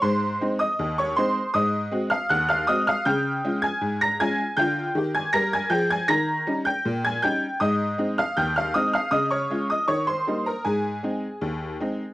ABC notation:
X:1
M:2/4
L:1/16
Q:1/4=79
K:Ab
V:1 name="Honky-tonk piano"
[cc']3 [ee']2 [dd'] [cc']2 | [ee']3 [ff'] [_g_g'] [ff'] [ee'] [ff'] | [gg']3 [aa']2 [bb'] [aa']2 | [gg']3 [aa'] [bb'] [aa'] [gg'] [aa'] |
[bb']3 [gg']2 [aa'] [gg']2 | [ee']3 [ff'] [gg'] [ff'] [ee'] [ff'] | [ee'] [dd']2 [ee'] [dd'] [cc']2 [Bb] | [Aa]8 |]
V:2 name="Honky-tonk piano"
A,,2 [A,CE]2 E,,2 [A,CE]2 | A,,2 [A,C_G]2 E,,2 [A,CG]2 | D,2 [A,DF]2 A,,2 [A,DF]2 | [=D,F]2 [E,G]2 [G,B]2 [F,A]2 |
E,2 [G,DE]2 B,,2 [G,DE]2 | A,,2 [A,CE]2 E,,2 [A,CE]2 | D,2 [A,DF]2 E,2 [G,B,E]2 | A,,2 [A,CE]2 E,,2 [A,CE]2 |]